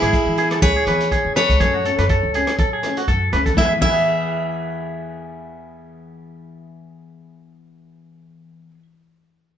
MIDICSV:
0, 0, Header, 1, 6, 480
1, 0, Start_track
1, 0, Key_signature, 4, "major"
1, 0, Tempo, 491803
1, 1566, Time_signature, 4, 2, 24, 8
1, 9349, End_track
2, 0, Start_track
2, 0, Title_t, "Steel-string acoustic guitar"
2, 0, Program_c, 0, 25
2, 0, Note_on_c, 0, 64, 62
2, 0, Note_on_c, 0, 68, 93
2, 575, Note_off_c, 0, 64, 0
2, 600, Note_off_c, 0, 68, 0
2, 608, Note_on_c, 0, 73, 94
2, 612, Note_on_c, 0, 68, 69
2, 1290, Note_off_c, 0, 68, 0
2, 1321, Note_off_c, 0, 73, 0
2, 1333, Note_on_c, 0, 73, 81
2, 1340, Note_on_c, 0, 69, 66
2, 2971, Note_off_c, 0, 73, 0
2, 2975, Note_off_c, 0, 69, 0
2, 3492, Note_on_c, 0, 76, 65
2, 3632, Note_off_c, 0, 76, 0
2, 3726, Note_on_c, 0, 76, 75
2, 8500, Note_off_c, 0, 76, 0
2, 9349, End_track
3, 0, Start_track
3, 0, Title_t, "Clean electric guitar"
3, 0, Program_c, 1, 27
3, 29, Note_on_c, 1, 68, 64
3, 128, Note_off_c, 1, 68, 0
3, 374, Note_on_c, 1, 68, 72
3, 496, Note_off_c, 1, 68, 0
3, 510, Note_on_c, 1, 69, 63
3, 603, Note_off_c, 1, 69, 0
3, 607, Note_on_c, 1, 71, 72
3, 731, Note_off_c, 1, 71, 0
3, 746, Note_on_c, 1, 68, 60
3, 846, Note_off_c, 1, 68, 0
3, 856, Note_on_c, 1, 71, 66
3, 1080, Note_off_c, 1, 71, 0
3, 1090, Note_on_c, 1, 68, 73
3, 1316, Note_off_c, 1, 68, 0
3, 1329, Note_on_c, 1, 71, 71
3, 1556, Note_off_c, 1, 71, 0
3, 1564, Note_on_c, 1, 68, 80
3, 1689, Note_off_c, 1, 68, 0
3, 1700, Note_on_c, 1, 66, 62
3, 1802, Note_off_c, 1, 66, 0
3, 1813, Note_on_c, 1, 69, 63
3, 1934, Note_off_c, 1, 69, 0
3, 1940, Note_on_c, 1, 71, 61
3, 2043, Note_off_c, 1, 71, 0
3, 2049, Note_on_c, 1, 69, 70
3, 2276, Note_off_c, 1, 69, 0
3, 2296, Note_on_c, 1, 68, 67
3, 2520, Note_off_c, 1, 68, 0
3, 2532, Note_on_c, 1, 69, 72
3, 2654, Note_off_c, 1, 69, 0
3, 2666, Note_on_c, 1, 68, 58
3, 2890, Note_off_c, 1, 68, 0
3, 2904, Note_on_c, 1, 66, 60
3, 3005, Note_off_c, 1, 66, 0
3, 3006, Note_on_c, 1, 69, 66
3, 3235, Note_off_c, 1, 69, 0
3, 3250, Note_on_c, 1, 71, 67
3, 3371, Note_off_c, 1, 71, 0
3, 3375, Note_on_c, 1, 69, 64
3, 3481, Note_off_c, 1, 69, 0
3, 3490, Note_on_c, 1, 64, 58
3, 3525, Note_on_c, 1, 68, 55
3, 3558, Note_off_c, 1, 64, 0
3, 3562, Note_on_c, 1, 71, 57
3, 3598, Note_off_c, 1, 71, 0
3, 3602, Note_on_c, 1, 76, 55
3, 3650, Note_off_c, 1, 68, 0
3, 3691, Note_off_c, 1, 76, 0
3, 3721, Note_on_c, 1, 64, 57
3, 3758, Note_on_c, 1, 68, 54
3, 3803, Note_on_c, 1, 71, 57
3, 3836, Note_off_c, 1, 64, 0
3, 3840, Note_on_c, 1, 76, 59
3, 8532, Note_off_c, 1, 68, 0
3, 8577, Note_off_c, 1, 71, 0
3, 8613, Note_off_c, 1, 76, 0
3, 9349, End_track
4, 0, Start_track
4, 0, Title_t, "Steel-string acoustic guitar"
4, 0, Program_c, 2, 25
4, 363, Note_on_c, 2, 68, 47
4, 378, Note_on_c, 2, 64, 43
4, 387, Note_on_c, 2, 59, 41
4, 518, Note_off_c, 2, 68, 0
4, 525, Note_off_c, 2, 64, 0
4, 530, Note_off_c, 2, 59, 0
4, 844, Note_on_c, 2, 68, 45
4, 862, Note_on_c, 2, 64, 42
4, 872, Note_on_c, 2, 59, 43
4, 998, Note_off_c, 2, 68, 0
4, 1007, Note_off_c, 2, 64, 0
4, 1012, Note_off_c, 2, 59, 0
4, 1319, Note_on_c, 2, 68, 49
4, 1336, Note_on_c, 2, 64, 46
4, 1344, Note_on_c, 2, 59, 42
4, 1475, Note_off_c, 2, 68, 0
4, 1484, Note_off_c, 2, 64, 0
4, 1488, Note_off_c, 2, 59, 0
4, 1558, Note_on_c, 2, 54, 62
4, 1562, Note_on_c, 2, 57, 61
4, 1571, Note_on_c, 2, 61, 75
4, 1574, Note_on_c, 2, 69, 67
4, 1715, Note_off_c, 2, 54, 0
4, 1717, Note_off_c, 2, 57, 0
4, 1721, Note_off_c, 2, 61, 0
4, 1723, Note_off_c, 2, 69, 0
4, 1801, Note_on_c, 2, 69, 52
4, 1814, Note_on_c, 2, 61, 38
4, 1828, Note_on_c, 2, 57, 38
4, 1956, Note_off_c, 2, 69, 0
4, 1963, Note_off_c, 2, 61, 0
4, 1970, Note_off_c, 2, 57, 0
4, 2283, Note_on_c, 2, 69, 55
4, 2302, Note_on_c, 2, 61, 48
4, 2312, Note_on_c, 2, 57, 48
4, 2438, Note_off_c, 2, 69, 0
4, 2447, Note_off_c, 2, 61, 0
4, 2452, Note_off_c, 2, 57, 0
4, 2771, Note_on_c, 2, 69, 56
4, 2784, Note_on_c, 2, 61, 51
4, 2798, Note_on_c, 2, 57, 45
4, 2922, Note_off_c, 2, 69, 0
4, 2928, Note_off_c, 2, 61, 0
4, 2935, Note_off_c, 2, 57, 0
4, 3241, Note_on_c, 2, 69, 47
4, 3259, Note_on_c, 2, 61, 45
4, 3272, Note_on_c, 2, 57, 45
4, 3397, Note_off_c, 2, 69, 0
4, 3406, Note_off_c, 2, 61, 0
4, 3412, Note_off_c, 2, 57, 0
4, 3437, Note_on_c, 2, 52, 63
4, 3511, Note_on_c, 2, 59, 73
4, 3572, Note_on_c, 2, 64, 78
4, 3621, Note_on_c, 2, 68, 74
4, 3663, Note_off_c, 2, 52, 0
4, 3667, Note_on_c, 2, 52, 61
4, 3738, Note_off_c, 2, 59, 0
4, 3742, Note_on_c, 2, 59, 66
4, 3800, Note_off_c, 2, 64, 0
4, 3804, Note_on_c, 2, 64, 65
4, 3851, Note_off_c, 2, 68, 0
4, 3855, Note_on_c, 2, 68, 70
4, 8480, Note_off_c, 2, 52, 0
4, 8554, Note_off_c, 2, 59, 0
4, 8617, Note_off_c, 2, 64, 0
4, 8668, Note_off_c, 2, 68, 0
4, 9349, End_track
5, 0, Start_track
5, 0, Title_t, "Upright bass"
5, 0, Program_c, 3, 32
5, 21, Note_on_c, 3, 44, 92
5, 112, Note_off_c, 3, 44, 0
5, 253, Note_on_c, 3, 52, 89
5, 549, Note_off_c, 3, 52, 0
5, 606, Note_on_c, 3, 37, 91
5, 716, Note_off_c, 3, 37, 0
5, 846, Note_on_c, 3, 52, 77
5, 1158, Note_off_c, 3, 52, 0
5, 1217, Note_on_c, 3, 49, 75
5, 1419, Note_off_c, 3, 49, 0
5, 1456, Note_on_c, 3, 37, 86
5, 1548, Note_off_c, 3, 37, 0
5, 1562, Note_on_c, 3, 42, 80
5, 1876, Note_off_c, 3, 42, 0
5, 1936, Note_on_c, 3, 42, 83
5, 2138, Note_off_c, 3, 42, 0
5, 2179, Note_on_c, 3, 37, 72
5, 2380, Note_off_c, 3, 37, 0
5, 2525, Note_on_c, 3, 54, 76
5, 2727, Note_off_c, 3, 54, 0
5, 3002, Note_on_c, 3, 42, 85
5, 3206, Note_off_c, 3, 42, 0
5, 3251, Note_on_c, 3, 37, 83
5, 3359, Note_off_c, 3, 37, 0
5, 3481, Note_on_c, 3, 40, 76
5, 3626, Note_off_c, 3, 40, 0
5, 3719, Note_on_c, 3, 40, 77
5, 8493, Note_off_c, 3, 40, 0
5, 9349, End_track
6, 0, Start_track
6, 0, Title_t, "Drums"
6, 18, Note_on_c, 9, 37, 64
6, 18, Note_on_c, 9, 42, 44
6, 115, Note_off_c, 9, 37, 0
6, 115, Note_off_c, 9, 42, 0
6, 127, Note_on_c, 9, 36, 64
6, 128, Note_on_c, 9, 42, 50
6, 224, Note_off_c, 9, 36, 0
6, 226, Note_off_c, 9, 42, 0
6, 368, Note_on_c, 9, 42, 44
6, 465, Note_off_c, 9, 42, 0
6, 497, Note_on_c, 9, 37, 60
6, 497, Note_on_c, 9, 42, 42
6, 595, Note_off_c, 9, 37, 0
6, 595, Note_off_c, 9, 42, 0
6, 606, Note_on_c, 9, 36, 74
6, 609, Note_on_c, 9, 42, 45
6, 704, Note_off_c, 9, 36, 0
6, 707, Note_off_c, 9, 42, 0
6, 846, Note_on_c, 9, 37, 61
6, 846, Note_on_c, 9, 42, 48
6, 944, Note_off_c, 9, 37, 0
6, 944, Note_off_c, 9, 42, 0
6, 982, Note_on_c, 9, 42, 46
6, 1079, Note_off_c, 9, 42, 0
6, 1088, Note_on_c, 9, 36, 57
6, 1092, Note_on_c, 9, 42, 46
6, 1185, Note_off_c, 9, 36, 0
6, 1189, Note_off_c, 9, 42, 0
6, 1328, Note_on_c, 9, 37, 65
6, 1328, Note_on_c, 9, 42, 47
6, 1426, Note_off_c, 9, 37, 0
6, 1426, Note_off_c, 9, 42, 0
6, 1458, Note_on_c, 9, 36, 58
6, 1465, Note_on_c, 9, 42, 50
6, 1556, Note_off_c, 9, 36, 0
6, 1563, Note_off_c, 9, 42, 0
6, 1567, Note_on_c, 9, 36, 76
6, 1569, Note_on_c, 9, 37, 62
6, 1569, Note_on_c, 9, 42, 51
6, 1664, Note_off_c, 9, 36, 0
6, 1667, Note_off_c, 9, 37, 0
6, 1667, Note_off_c, 9, 42, 0
6, 1809, Note_on_c, 9, 42, 45
6, 1907, Note_off_c, 9, 42, 0
6, 1939, Note_on_c, 9, 37, 63
6, 1939, Note_on_c, 9, 42, 47
6, 2036, Note_off_c, 9, 37, 0
6, 2036, Note_off_c, 9, 42, 0
6, 2043, Note_on_c, 9, 42, 49
6, 2044, Note_on_c, 9, 36, 63
6, 2141, Note_off_c, 9, 36, 0
6, 2141, Note_off_c, 9, 42, 0
6, 2285, Note_on_c, 9, 42, 43
6, 2383, Note_off_c, 9, 42, 0
6, 2413, Note_on_c, 9, 37, 60
6, 2413, Note_on_c, 9, 42, 42
6, 2510, Note_off_c, 9, 37, 0
6, 2510, Note_off_c, 9, 42, 0
6, 2524, Note_on_c, 9, 36, 73
6, 2524, Note_on_c, 9, 42, 43
6, 2621, Note_off_c, 9, 42, 0
6, 2622, Note_off_c, 9, 36, 0
6, 2764, Note_on_c, 9, 37, 58
6, 2764, Note_on_c, 9, 42, 45
6, 2862, Note_off_c, 9, 37, 0
6, 2862, Note_off_c, 9, 42, 0
6, 2899, Note_on_c, 9, 42, 45
6, 2996, Note_off_c, 9, 42, 0
6, 3005, Note_on_c, 9, 36, 58
6, 3006, Note_on_c, 9, 42, 43
6, 3103, Note_off_c, 9, 36, 0
6, 3104, Note_off_c, 9, 42, 0
6, 3249, Note_on_c, 9, 37, 59
6, 3249, Note_on_c, 9, 42, 44
6, 3346, Note_off_c, 9, 37, 0
6, 3346, Note_off_c, 9, 42, 0
6, 3376, Note_on_c, 9, 36, 54
6, 3379, Note_on_c, 9, 42, 41
6, 3474, Note_off_c, 9, 36, 0
6, 3477, Note_off_c, 9, 42, 0
6, 3483, Note_on_c, 9, 36, 73
6, 3485, Note_on_c, 9, 38, 57
6, 3581, Note_off_c, 9, 36, 0
6, 3582, Note_off_c, 9, 38, 0
6, 3723, Note_on_c, 9, 36, 64
6, 3724, Note_on_c, 9, 49, 57
6, 3821, Note_off_c, 9, 36, 0
6, 3821, Note_off_c, 9, 49, 0
6, 9349, End_track
0, 0, End_of_file